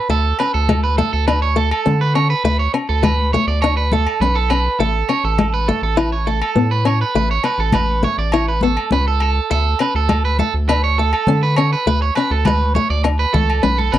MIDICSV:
0, 0, Header, 1, 7, 480
1, 0, Start_track
1, 0, Tempo, 588813
1, 74, Time_signature, 4, 2, 24, 8
1, 11401, End_track
2, 0, Start_track
2, 0, Title_t, "Clean electric guitar"
2, 0, Program_c, 0, 27
2, 84, Note_on_c, 0, 69, 98
2, 307, Note_off_c, 0, 69, 0
2, 323, Note_on_c, 0, 71, 88
2, 434, Note_off_c, 0, 71, 0
2, 441, Note_on_c, 0, 69, 74
2, 666, Note_off_c, 0, 69, 0
2, 681, Note_on_c, 0, 71, 78
2, 791, Note_off_c, 0, 71, 0
2, 799, Note_on_c, 0, 69, 83
2, 911, Note_off_c, 0, 69, 0
2, 921, Note_on_c, 0, 69, 79
2, 1030, Note_off_c, 0, 69, 0
2, 1039, Note_on_c, 0, 71, 90
2, 1151, Note_off_c, 0, 71, 0
2, 1158, Note_on_c, 0, 73, 76
2, 1269, Note_off_c, 0, 73, 0
2, 1277, Note_on_c, 0, 69, 81
2, 1387, Note_off_c, 0, 69, 0
2, 1397, Note_on_c, 0, 69, 78
2, 1623, Note_off_c, 0, 69, 0
2, 1639, Note_on_c, 0, 71, 81
2, 1749, Note_off_c, 0, 71, 0
2, 1755, Note_on_c, 0, 73, 83
2, 1868, Note_off_c, 0, 73, 0
2, 1874, Note_on_c, 0, 71, 79
2, 1984, Note_off_c, 0, 71, 0
2, 1993, Note_on_c, 0, 71, 95
2, 2107, Note_off_c, 0, 71, 0
2, 2114, Note_on_c, 0, 73, 67
2, 2226, Note_off_c, 0, 73, 0
2, 2356, Note_on_c, 0, 69, 77
2, 2467, Note_off_c, 0, 69, 0
2, 2475, Note_on_c, 0, 71, 81
2, 2701, Note_off_c, 0, 71, 0
2, 2716, Note_on_c, 0, 73, 76
2, 2828, Note_off_c, 0, 73, 0
2, 2835, Note_on_c, 0, 74, 75
2, 2945, Note_off_c, 0, 74, 0
2, 2949, Note_on_c, 0, 73, 84
2, 3064, Note_off_c, 0, 73, 0
2, 3072, Note_on_c, 0, 71, 74
2, 3184, Note_off_c, 0, 71, 0
2, 3199, Note_on_c, 0, 69, 84
2, 3422, Note_off_c, 0, 69, 0
2, 3435, Note_on_c, 0, 71, 85
2, 3547, Note_off_c, 0, 71, 0
2, 3549, Note_on_c, 0, 69, 77
2, 3662, Note_off_c, 0, 69, 0
2, 3668, Note_on_c, 0, 71, 74
2, 3896, Note_off_c, 0, 71, 0
2, 3910, Note_on_c, 0, 69, 98
2, 4138, Note_off_c, 0, 69, 0
2, 4148, Note_on_c, 0, 73, 83
2, 4263, Note_off_c, 0, 73, 0
2, 4276, Note_on_c, 0, 69, 71
2, 4501, Note_off_c, 0, 69, 0
2, 4513, Note_on_c, 0, 71, 80
2, 4624, Note_off_c, 0, 71, 0
2, 4631, Note_on_c, 0, 69, 78
2, 4745, Note_off_c, 0, 69, 0
2, 4755, Note_on_c, 0, 69, 76
2, 4865, Note_off_c, 0, 69, 0
2, 4870, Note_on_c, 0, 71, 85
2, 4984, Note_off_c, 0, 71, 0
2, 4993, Note_on_c, 0, 73, 74
2, 5104, Note_off_c, 0, 73, 0
2, 5111, Note_on_c, 0, 69, 81
2, 5222, Note_off_c, 0, 69, 0
2, 5232, Note_on_c, 0, 69, 77
2, 5459, Note_off_c, 0, 69, 0
2, 5471, Note_on_c, 0, 71, 78
2, 5583, Note_off_c, 0, 71, 0
2, 5596, Note_on_c, 0, 73, 75
2, 5707, Note_off_c, 0, 73, 0
2, 5718, Note_on_c, 0, 71, 79
2, 5826, Note_off_c, 0, 71, 0
2, 5835, Note_on_c, 0, 71, 98
2, 5947, Note_off_c, 0, 71, 0
2, 5958, Note_on_c, 0, 73, 75
2, 6067, Note_off_c, 0, 73, 0
2, 6073, Note_on_c, 0, 71, 84
2, 6186, Note_off_c, 0, 71, 0
2, 6194, Note_on_c, 0, 69, 74
2, 6305, Note_off_c, 0, 69, 0
2, 6313, Note_on_c, 0, 71, 85
2, 6539, Note_off_c, 0, 71, 0
2, 6557, Note_on_c, 0, 73, 84
2, 6668, Note_off_c, 0, 73, 0
2, 6673, Note_on_c, 0, 74, 78
2, 6784, Note_off_c, 0, 74, 0
2, 6794, Note_on_c, 0, 73, 87
2, 6906, Note_off_c, 0, 73, 0
2, 6916, Note_on_c, 0, 71, 77
2, 7026, Note_off_c, 0, 71, 0
2, 7037, Note_on_c, 0, 69, 83
2, 7261, Note_off_c, 0, 69, 0
2, 7276, Note_on_c, 0, 71, 90
2, 7387, Note_off_c, 0, 71, 0
2, 7399, Note_on_c, 0, 69, 79
2, 7507, Note_off_c, 0, 69, 0
2, 7517, Note_on_c, 0, 69, 79
2, 7741, Note_off_c, 0, 69, 0
2, 7755, Note_on_c, 0, 69, 96
2, 7980, Note_off_c, 0, 69, 0
2, 7997, Note_on_c, 0, 71, 79
2, 8108, Note_off_c, 0, 71, 0
2, 8118, Note_on_c, 0, 69, 78
2, 8342, Note_off_c, 0, 69, 0
2, 8355, Note_on_c, 0, 71, 81
2, 8466, Note_off_c, 0, 71, 0
2, 8472, Note_on_c, 0, 69, 80
2, 8586, Note_off_c, 0, 69, 0
2, 8712, Note_on_c, 0, 71, 90
2, 8826, Note_off_c, 0, 71, 0
2, 8835, Note_on_c, 0, 73, 76
2, 8946, Note_off_c, 0, 73, 0
2, 8953, Note_on_c, 0, 69, 82
2, 9066, Note_off_c, 0, 69, 0
2, 9077, Note_on_c, 0, 69, 76
2, 9303, Note_off_c, 0, 69, 0
2, 9316, Note_on_c, 0, 71, 79
2, 9427, Note_off_c, 0, 71, 0
2, 9433, Note_on_c, 0, 73, 79
2, 9547, Note_off_c, 0, 73, 0
2, 9559, Note_on_c, 0, 71, 77
2, 9669, Note_off_c, 0, 71, 0
2, 9680, Note_on_c, 0, 71, 99
2, 9791, Note_off_c, 0, 71, 0
2, 9798, Note_on_c, 0, 73, 72
2, 9909, Note_off_c, 0, 73, 0
2, 9913, Note_on_c, 0, 71, 84
2, 10028, Note_off_c, 0, 71, 0
2, 10038, Note_on_c, 0, 69, 72
2, 10149, Note_off_c, 0, 69, 0
2, 10158, Note_on_c, 0, 71, 87
2, 10384, Note_off_c, 0, 71, 0
2, 10394, Note_on_c, 0, 73, 82
2, 10509, Note_off_c, 0, 73, 0
2, 10518, Note_on_c, 0, 74, 80
2, 10628, Note_off_c, 0, 74, 0
2, 10754, Note_on_c, 0, 71, 75
2, 10868, Note_off_c, 0, 71, 0
2, 10872, Note_on_c, 0, 69, 86
2, 11102, Note_off_c, 0, 69, 0
2, 11111, Note_on_c, 0, 71, 84
2, 11229, Note_off_c, 0, 71, 0
2, 11235, Note_on_c, 0, 69, 75
2, 11349, Note_on_c, 0, 71, 79
2, 11350, Note_off_c, 0, 69, 0
2, 11401, Note_off_c, 0, 71, 0
2, 11401, End_track
3, 0, Start_track
3, 0, Title_t, "Steel-string acoustic guitar"
3, 0, Program_c, 1, 25
3, 78, Note_on_c, 1, 57, 98
3, 216, Note_off_c, 1, 57, 0
3, 324, Note_on_c, 1, 61, 83
3, 461, Note_off_c, 1, 61, 0
3, 564, Note_on_c, 1, 56, 87
3, 700, Note_off_c, 1, 56, 0
3, 801, Note_on_c, 1, 57, 85
3, 938, Note_off_c, 1, 57, 0
3, 1041, Note_on_c, 1, 62, 96
3, 1178, Note_off_c, 1, 62, 0
3, 1272, Note_on_c, 1, 57, 89
3, 1411, Note_off_c, 1, 57, 0
3, 1514, Note_on_c, 1, 61, 84
3, 1653, Note_off_c, 1, 61, 0
3, 1755, Note_on_c, 1, 61, 77
3, 1894, Note_off_c, 1, 61, 0
3, 1997, Note_on_c, 1, 57, 98
3, 2135, Note_off_c, 1, 57, 0
3, 2232, Note_on_c, 1, 61, 80
3, 2371, Note_off_c, 1, 61, 0
3, 2470, Note_on_c, 1, 56, 89
3, 2609, Note_off_c, 1, 56, 0
3, 2724, Note_on_c, 1, 57, 85
3, 2859, Note_off_c, 1, 57, 0
3, 2965, Note_on_c, 1, 62, 97
3, 3100, Note_off_c, 1, 62, 0
3, 3202, Note_on_c, 1, 57, 84
3, 3338, Note_off_c, 1, 57, 0
3, 3444, Note_on_c, 1, 61, 81
3, 3579, Note_off_c, 1, 61, 0
3, 3673, Note_on_c, 1, 61, 83
3, 3811, Note_off_c, 1, 61, 0
3, 3915, Note_on_c, 1, 57, 98
3, 4053, Note_off_c, 1, 57, 0
3, 4151, Note_on_c, 1, 61, 76
3, 4290, Note_off_c, 1, 61, 0
3, 4391, Note_on_c, 1, 56, 87
3, 4530, Note_off_c, 1, 56, 0
3, 4635, Note_on_c, 1, 57, 90
3, 4773, Note_off_c, 1, 57, 0
3, 4868, Note_on_c, 1, 64, 99
3, 5008, Note_off_c, 1, 64, 0
3, 5111, Note_on_c, 1, 57, 77
3, 5250, Note_off_c, 1, 57, 0
3, 5346, Note_on_c, 1, 59, 83
3, 5486, Note_off_c, 1, 59, 0
3, 5585, Note_on_c, 1, 61, 84
3, 5725, Note_off_c, 1, 61, 0
3, 5832, Note_on_c, 1, 57, 101
3, 5970, Note_off_c, 1, 57, 0
3, 6547, Note_on_c, 1, 57, 85
3, 6687, Note_off_c, 1, 57, 0
3, 6795, Note_on_c, 1, 64, 100
3, 6933, Note_off_c, 1, 64, 0
3, 7033, Note_on_c, 1, 59, 79
3, 7171, Note_off_c, 1, 59, 0
3, 7273, Note_on_c, 1, 61, 83
3, 7411, Note_off_c, 1, 61, 0
3, 7750, Note_on_c, 1, 57, 99
3, 7889, Note_off_c, 1, 57, 0
3, 7991, Note_on_c, 1, 61, 77
3, 8130, Note_off_c, 1, 61, 0
3, 8225, Note_on_c, 1, 56, 81
3, 8366, Note_off_c, 1, 56, 0
3, 8474, Note_on_c, 1, 57, 83
3, 8613, Note_off_c, 1, 57, 0
3, 8717, Note_on_c, 1, 62, 101
3, 8855, Note_off_c, 1, 62, 0
3, 8961, Note_on_c, 1, 57, 79
3, 9098, Note_off_c, 1, 57, 0
3, 9197, Note_on_c, 1, 61, 86
3, 9335, Note_off_c, 1, 61, 0
3, 9438, Note_on_c, 1, 61, 84
3, 9576, Note_off_c, 1, 61, 0
3, 9677, Note_on_c, 1, 57, 94
3, 9815, Note_off_c, 1, 57, 0
3, 9923, Note_on_c, 1, 61, 79
3, 10060, Note_off_c, 1, 61, 0
3, 10169, Note_on_c, 1, 56, 86
3, 10304, Note_off_c, 1, 56, 0
3, 10403, Note_on_c, 1, 57, 81
3, 10540, Note_off_c, 1, 57, 0
3, 10635, Note_on_c, 1, 62, 91
3, 10775, Note_off_c, 1, 62, 0
3, 10873, Note_on_c, 1, 57, 78
3, 11014, Note_off_c, 1, 57, 0
3, 11110, Note_on_c, 1, 61, 80
3, 11252, Note_off_c, 1, 61, 0
3, 11360, Note_on_c, 1, 61, 84
3, 11401, Note_off_c, 1, 61, 0
3, 11401, End_track
4, 0, Start_track
4, 0, Title_t, "Analog synth bass"
4, 0, Program_c, 2, 38
4, 74, Note_on_c, 2, 38, 95
4, 270, Note_off_c, 2, 38, 0
4, 443, Note_on_c, 2, 38, 96
4, 832, Note_off_c, 2, 38, 0
4, 924, Note_on_c, 2, 38, 88
4, 1409, Note_off_c, 2, 38, 0
4, 1523, Note_on_c, 2, 50, 102
4, 1910, Note_off_c, 2, 50, 0
4, 1990, Note_on_c, 2, 38, 100
4, 2186, Note_off_c, 2, 38, 0
4, 2357, Note_on_c, 2, 38, 91
4, 2747, Note_off_c, 2, 38, 0
4, 2831, Note_on_c, 2, 38, 87
4, 3320, Note_off_c, 2, 38, 0
4, 3426, Note_on_c, 2, 35, 98
4, 3819, Note_off_c, 2, 35, 0
4, 3907, Note_on_c, 2, 33, 96
4, 4104, Note_off_c, 2, 33, 0
4, 4270, Note_on_c, 2, 33, 94
4, 4662, Note_off_c, 2, 33, 0
4, 4746, Note_on_c, 2, 33, 88
4, 5237, Note_off_c, 2, 33, 0
4, 5347, Note_on_c, 2, 45, 104
4, 5740, Note_off_c, 2, 45, 0
4, 5827, Note_on_c, 2, 33, 93
4, 6024, Note_off_c, 2, 33, 0
4, 6180, Note_on_c, 2, 33, 88
4, 6576, Note_off_c, 2, 33, 0
4, 6666, Note_on_c, 2, 33, 86
4, 7157, Note_off_c, 2, 33, 0
4, 7271, Note_on_c, 2, 37, 104
4, 7663, Note_off_c, 2, 37, 0
4, 7752, Note_on_c, 2, 38, 97
4, 7947, Note_off_c, 2, 38, 0
4, 8108, Note_on_c, 2, 38, 90
4, 8502, Note_off_c, 2, 38, 0
4, 8591, Note_on_c, 2, 38, 89
4, 9081, Note_off_c, 2, 38, 0
4, 9186, Note_on_c, 2, 50, 98
4, 9581, Note_off_c, 2, 50, 0
4, 9674, Note_on_c, 2, 38, 92
4, 9869, Note_off_c, 2, 38, 0
4, 10032, Note_on_c, 2, 38, 97
4, 10426, Note_off_c, 2, 38, 0
4, 10515, Note_on_c, 2, 38, 91
4, 10809, Note_off_c, 2, 38, 0
4, 10874, Note_on_c, 2, 37, 85
4, 11091, Note_off_c, 2, 37, 0
4, 11117, Note_on_c, 2, 35, 85
4, 11334, Note_off_c, 2, 35, 0
4, 11359, Note_on_c, 2, 33, 96
4, 11401, Note_off_c, 2, 33, 0
4, 11401, End_track
5, 0, Start_track
5, 0, Title_t, "Muted clean electric guitar strokes"
5, 2234, Note_on_c, 9, 29, 88
5, 2315, Note_off_c, 9, 29, 0
5, 10631, Note_on_c, 9, 29, 81
5, 10713, Note_off_c, 9, 29, 0
5, 11401, End_track
6, 0, Start_track
6, 0, Title_t, "Muted steel-string acoustic guitar strokes"
6, 6064, Note_on_c, 9, 29, 75
6, 6146, Note_off_c, 9, 29, 0
6, 6306, Note_on_c, 9, 29, 85
6, 6388, Note_off_c, 9, 29, 0
6, 11401, End_track
7, 0, Start_track
7, 0, Title_t, "Drums"
7, 84, Note_on_c, 9, 62, 31
7, 165, Note_off_c, 9, 62, 0
7, 315, Note_on_c, 9, 68, 68
7, 325, Note_on_c, 9, 62, 32
7, 397, Note_off_c, 9, 68, 0
7, 407, Note_off_c, 9, 62, 0
7, 561, Note_on_c, 9, 63, 100
7, 562, Note_on_c, 9, 68, 71
7, 643, Note_off_c, 9, 63, 0
7, 643, Note_off_c, 9, 68, 0
7, 805, Note_on_c, 9, 63, 80
7, 887, Note_off_c, 9, 63, 0
7, 1042, Note_on_c, 9, 68, 75
7, 1048, Note_on_c, 9, 62, 30
7, 1123, Note_off_c, 9, 68, 0
7, 1130, Note_off_c, 9, 62, 0
7, 1397, Note_on_c, 9, 68, 74
7, 1478, Note_off_c, 9, 68, 0
7, 1524, Note_on_c, 9, 63, 67
7, 1606, Note_off_c, 9, 63, 0
7, 1757, Note_on_c, 9, 68, 69
7, 1761, Note_on_c, 9, 62, 27
7, 1838, Note_off_c, 9, 68, 0
7, 1842, Note_off_c, 9, 62, 0
7, 2004, Note_on_c, 9, 62, 30
7, 2085, Note_off_c, 9, 62, 0
7, 2236, Note_on_c, 9, 68, 67
7, 2318, Note_off_c, 9, 68, 0
7, 2475, Note_on_c, 9, 63, 89
7, 2475, Note_on_c, 9, 64, 60
7, 2480, Note_on_c, 9, 68, 67
7, 2556, Note_off_c, 9, 63, 0
7, 2556, Note_off_c, 9, 64, 0
7, 2561, Note_off_c, 9, 68, 0
7, 2721, Note_on_c, 9, 63, 75
7, 2803, Note_off_c, 9, 63, 0
7, 2952, Note_on_c, 9, 68, 71
7, 2955, Note_on_c, 9, 62, 29
7, 3034, Note_off_c, 9, 68, 0
7, 3037, Note_off_c, 9, 62, 0
7, 3193, Note_on_c, 9, 63, 76
7, 3275, Note_off_c, 9, 63, 0
7, 3314, Note_on_c, 9, 68, 69
7, 3396, Note_off_c, 9, 68, 0
7, 3439, Note_on_c, 9, 63, 76
7, 3520, Note_off_c, 9, 63, 0
7, 3668, Note_on_c, 9, 68, 76
7, 3670, Note_on_c, 9, 62, 27
7, 3750, Note_off_c, 9, 68, 0
7, 3752, Note_off_c, 9, 62, 0
7, 3911, Note_on_c, 9, 62, 33
7, 3993, Note_off_c, 9, 62, 0
7, 4147, Note_on_c, 9, 68, 69
7, 4151, Note_on_c, 9, 62, 31
7, 4229, Note_off_c, 9, 68, 0
7, 4232, Note_off_c, 9, 62, 0
7, 4389, Note_on_c, 9, 68, 70
7, 4391, Note_on_c, 9, 63, 96
7, 4470, Note_off_c, 9, 68, 0
7, 4472, Note_off_c, 9, 63, 0
7, 4636, Note_on_c, 9, 63, 81
7, 4717, Note_off_c, 9, 63, 0
7, 4871, Note_on_c, 9, 68, 70
7, 4872, Note_on_c, 9, 62, 32
7, 4953, Note_off_c, 9, 62, 0
7, 4953, Note_off_c, 9, 68, 0
7, 5230, Note_on_c, 9, 68, 70
7, 5311, Note_off_c, 9, 68, 0
7, 5344, Note_on_c, 9, 63, 76
7, 5425, Note_off_c, 9, 63, 0
7, 5586, Note_on_c, 9, 62, 30
7, 5588, Note_on_c, 9, 68, 73
7, 5667, Note_off_c, 9, 62, 0
7, 5669, Note_off_c, 9, 68, 0
7, 5829, Note_on_c, 9, 62, 34
7, 5910, Note_off_c, 9, 62, 0
7, 6061, Note_on_c, 9, 68, 71
7, 6063, Note_on_c, 9, 62, 31
7, 6143, Note_off_c, 9, 68, 0
7, 6145, Note_off_c, 9, 62, 0
7, 6297, Note_on_c, 9, 63, 100
7, 6297, Note_on_c, 9, 64, 69
7, 6302, Note_on_c, 9, 68, 70
7, 6379, Note_off_c, 9, 63, 0
7, 6379, Note_off_c, 9, 64, 0
7, 6383, Note_off_c, 9, 68, 0
7, 6544, Note_on_c, 9, 63, 85
7, 6626, Note_off_c, 9, 63, 0
7, 6782, Note_on_c, 9, 62, 31
7, 6783, Note_on_c, 9, 68, 76
7, 6863, Note_off_c, 9, 62, 0
7, 6864, Note_off_c, 9, 68, 0
7, 7018, Note_on_c, 9, 63, 78
7, 7100, Note_off_c, 9, 63, 0
7, 7147, Note_on_c, 9, 68, 71
7, 7229, Note_off_c, 9, 68, 0
7, 7261, Note_on_c, 9, 63, 80
7, 7343, Note_off_c, 9, 63, 0
7, 7502, Note_on_c, 9, 68, 70
7, 7507, Note_on_c, 9, 62, 31
7, 7584, Note_off_c, 9, 68, 0
7, 7589, Note_off_c, 9, 62, 0
7, 7746, Note_on_c, 9, 62, 34
7, 7828, Note_off_c, 9, 62, 0
7, 7982, Note_on_c, 9, 68, 72
7, 7988, Note_on_c, 9, 62, 32
7, 8064, Note_off_c, 9, 68, 0
7, 8070, Note_off_c, 9, 62, 0
7, 8227, Note_on_c, 9, 63, 100
7, 8227, Note_on_c, 9, 68, 73
7, 8309, Note_off_c, 9, 63, 0
7, 8309, Note_off_c, 9, 68, 0
7, 8469, Note_on_c, 9, 63, 84
7, 8550, Note_off_c, 9, 63, 0
7, 8707, Note_on_c, 9, 62, 33
7, 8714, Note_on_c, 9, 68, 75
7, 8789, Note_off_c, 9, 62, 0
7, 8795, Note_off_c, 9, 68, 0
7, 9071, Note_on_c, 9, 68, 70
7, 9152, Note_off_c, 9, 68, 0
7, 9187, Note_on_c, 9, 63, 78
7, 9269, Note_off_c, 9, 63, 0
7, 9427, Note_on_c, 9, 68, 72
7, 9428, Note_on_c, 9, 62, 32
7, 9508, Note_off_c, 9, 68, 0
7, 9510, Note_off_c, 9, 62, 0
7, 9668, Note_on_c, 9, 62, 32
7, 9750, Note_off_c, 9, 62, 0
7, 9908, Note_on_c, 9, 68, 66
7, 9913, Note_on_c, 9, 62, 33
7, 9989, Note_off_c, 9, 68, 0
7, 9995, Note_off_c, 9, 62, 0
7, 10149, Note_on_c, 9, 68, 68
7, 10152, Note_on_c, 9, 63, 96
7, 10152, Note_on_c, 9, 64, 66
7, 10230, Note_off_c, 9, 68, 0
7, 10234, Note_off_c, 9, 63, 0
7, 10234, Note_off_c, 9, 64, 0
7, 10393, Note_on_c, 9, 63, 83
7, 10475, Note_off_c, 9, 63, 0
7, 10631, Note_on_c, 9, 68, 76
7, 10636, Note_on_c, 9, 62, 31
7, 10712, Note_off_c, 9, 68, 0
7, 10717, Note_off_c, 9, 62, 0
7, 10879, Note_on_c, 9, 63, 75
7, 10879, Note_on_c, 9, 64, 72
7, 10960, Note_off_c, 9, 63, 0
7, 10960, Note_off_c, 9, 64, 0
7, 11003, Note_on_c, 9, 68, 68
7, 11084, Note_off_c, 9, 68, 0
7, 11117, Note_on_c, 9, 63, 78
7, 11199, Note_off_c, 9, 63, 0
7, 11243, Note_on_c, 9, 63, 57
7, 11324, Note_off_c, 9, 63, 0
7, 11360, Note_on_c, 9, 64, 64
7, 11362, Note_on_c, 9, 68, 70
7, 11401, Note_off_c, 9, 64, 0
7, 11401, Note_off_c, 9, 68, 0
7, 11401, End_track
0, 0, End_of_file